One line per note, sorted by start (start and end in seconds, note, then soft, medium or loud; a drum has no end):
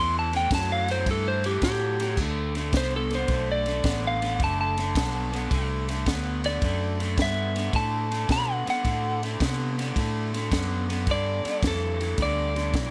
0.00 0.49 E2 medium
0.00 0.29 A2 medium
0.00 0.29 E3 medium
0.00 0.15 C6 medium
0.19 0.35 A5 medium
0.33 0.49 A2 medium
0.33 0.50 E3 medium
0.33 0.53 G5 medium
0.33 snare soft
0.33 ride medium
0.51 1.05 F#2 medium
0.51 0.85 A2 medium
0.51 0.85 F#3 medium
0.51 kick loud
0.51 snare loud
0.51 ride medium
0.55 0.71 A5 medium
0.72 0.89 F5 medium
0.88 1.05 A2 medium
0.88 1.05 F#3 medium
0.88 1.08 C5 medium
0.88 snare soft
0.88 ride medium
1.06 1.60 G2 medium
1.06 1.40 A2 medium
1.06 1.41 E3 medium
1.06 kick medium
1.06 snare soft
1.06 ride medium
1.11 1.27 A4 loud
1.28 1.44 C5 medium
1.44 1.60 A2 medium
1.44 1.60 E3 medium
1.44 1.63 G4 medium
1.44 snare soft
1.44 ride medium
1.62 2.16 A2 medium
1.62 1.96 A2 medium
1.62 1.96 F#3 medium
1.62 2.17 G4 loud
1.62 kick medium
1.62 snare loud
1.62 ride medium
2.00 2.16 A2 medium
2.00 2.16 F#3 medium
2.00 snare soft
2.00 ride medium
2.17 2.71 D2 medium
2.17 2.52 D3 medium
2.17 2.52 A3 medium
2.17 kick medium
2.17 snare soft
2.17 crash medium
2.55 2.71 D3 medium
2.55 2.72 A3 medium
2.55 snare soft
2.55 ride medium
2.73 3.27 C2 medium
2.73 3.07 D3 medium
2.73 3.08 B3 medium
2.73 kick medium
2.73 snare loud
2.73 ride medium
2.77 2.93 C5 medium
2.96 3.12 A4 medium
3.10 3.27 D3 medium
3.10 3.27 B3 medium
3.10 snare soft
3.10 ride medium
3.15 3.49 C5 medium
3.28 3.83 B1 medium
3.28 3.63 D3 medium
3.28 3.63 A3 medium
3.28 kick medium
3.28 snare soft
3.28 ride medium
3.52 4.03 D5 medium
3.66 3.83 D3 medium
3.66 3.83 A3 medium
3.66 snare soft
3.66 ride medium
3.84 4.38 A1 medium
3.84 4.18 D3 medium
3.84 4.19 B3 medium
3.84 kick medium
3.84 snare loud
3.84 ride medium
4.07 4.41 F5 medium
4.22 4.38 D3 medium
4.22 4.38 B3 medium
4.22 snare soft
4.22 ride medium
4.40 4.94 F#1 medium
4.40 4.74 D3 medium
4.40 4.74 A3 medium
4.40 kick medium
4.40 snare soft
4.40 ride medium
4.44 4.60 A5 medium
4.61 5.67 A5 medium
4.78 4.94 D3 medium
4.78 4.94 A3 medium
4.78 snare soft
4.78 ride medium
4.95 5.49 B1 medium
4.95 5.29 D3 medium
4.95 5.30 B3 medium
4.95 kick medium
4.95 snare loud
4.95 ride medium
5.32 5.49 D3 medium
5.32 5.49 B3 medium
5.32 snare soft
5.32 ride medium
5.50 6.05 C2 medium
5.50 5.85 D3 medium
5.50 5.85 A3 medium
5.50 kick medium
5.50 snare soft
5.50 ride medium
5.88 6.05 D3 medium
5.88 6.05 A3 medium
5.88 snare soft
5.88 ride medium
6.06 6.60 D2 medium
6.06 6.40 D3 medium
6.06 6.40 B3 loud
6.06 kick medium
6.06 snare loud
6.06 ride medium
6.44 6.60 D3 medium
6.44 6.60 B3 medium
6.44 7.17 D5 medium
6.44 snare soft
6.44 ride medium
6.62 7.16 F#2 medium
6.62 6.96 D3 medium
6.62 6.97 A3 medium
6.62 kick medium
6.62 snare soft
6.62 ride medium
7.00 7.16 D3 medium
7.00 7.16 A3 medium
7.00 snare soft
7.00 ride medium
7.17 7.72 G2 medium
7.17 7.51 D3 medium
7.17 7.52 B3 medium
7.17 kick medium
7.17 snare loud
7.17 ride medium
7.22 7.74 E5 medium
7.55 7.71 D3 medium
7.55 7.71 B3 medium
7.55 snare soft
7.55 ride medium
7.72 8.27 A2 medium
7.72 8.07 D3 medium
7.72 8.07 A3 medium
7.72 8.29 A5 loud
7.72 kick medium
7.72 snare soft
7.72 ride medium
8.11 8.27 D3 medium
8.11 8.27 A3 medium
8.11 snare soft
8.11 ride medium
8.28 8.64 B2 medium
8.28 8.62 D3 medium
8.28 8.63 B3 medium
8.28 kick medium
8.28 snare loud
8.28 ride medium
8.32 8.51 B5 medium
8.51 8.67 F#5 medium
8.66 8.82 D3 medium
8.66 8.83 B3 medium
8.66 muted fingered electric bass stroke soft
8.66 snare soft
8.66 ride medium
8.70 9.22 F#5 medium
8.84 9.38 A2 medium
8.84 9.18 D3 medium
8.84 9.18 A3 medium
8.84 kick medium
8.84 snare soft
8.84 ride medium
9.23 9.38 D3 medium
9.23 9.38 A3 medium
9.23 snare soft
9.23 ride soft
9.40 9.94 C3 medium
9.40 9.74 D3 medium
9.40 9.74 B3 medium
9.40 kick medium
9.40 snare loud
9.40 ride medium
9.78 9.94 D3 medium
9.78 9.94 B3 medium
9.78 snare soft
9.78 ride medium
9.96 10.50 A2 medium
9.96 10.30 D3 medium
9.96 10.30 A3 medium
9.96 kick medium
9.96 snare soft
9.96 ride medium
10.33 10.49 D3 medium
10.33 10.49 A3 medium
10.33 snare soft
10.33 ride medium
10.51 11.05 F#2 medium
10.51 10.85 D3 medium
10.51 10.85 B3 medium
10.51 kick medium
10.51 snare loud
10.51 ride medium
10.89 11.05 D3 medium
10.89 11.05 B3 medium
10.89 snare soft
10.89 ride medium
11.07 11.41 G2 medium
11.07 11.42 G2 medium
11.07 11.41 D3 medium
11.07 kick medium
11.07 snare soft
11.07 ride medium
11.11 11.63 D5 loud
11.44 11.61 G2 medium
11.44 11.61 D3 medium
11.44 muted fingered electric bass stroke soft
11.44 snare soft
11.44 ride medium
11.62 12.16 F2 medium
11.62 11.96 G2 medium
11.62 11.97 E3 medium
11.62 kick medium
11.62 snare loud
11.62 ride medium
11.67 12.19 A4 medium
12.00 12.16 G2 medium
12.00 12.16 E3 medium
12.00 snare soft
12.00 ride medium
12.18 12.72 D2 medium
12.18 12.52 G2 medium
12.18 12.53 D3 medium
12.18 kick medium
12.18 snare soft
12.18 ride medium
12.22 12.91 D5 medium
12.56 12.72 G2 medium
12.56 12.72 D3 medium
12.56 snare soft
12.56 ride medium
12.74 12.91 B1 medium
12.74 12.91 G2 medium
12.74 12.91 E3 medium
12.74 kick medium
12.74 snare loud
12.74 ride medium